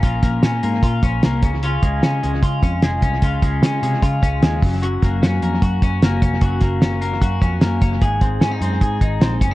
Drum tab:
HH |xxxxxxxx|xxxxxxxx|xxxxxxxo|xxxxxxxx|
SD |-oo---o-|--o---o-|--o---o-|-oo---o-|
BD |oo--oo-o|-o--oo-o|oo--oo-o|-o--oo-o|

HH |xxxxxxxx|xxxxxxxx|
SD |-oo---o-|--o---o-|
BD |oo--oo-o|oo--oo-o|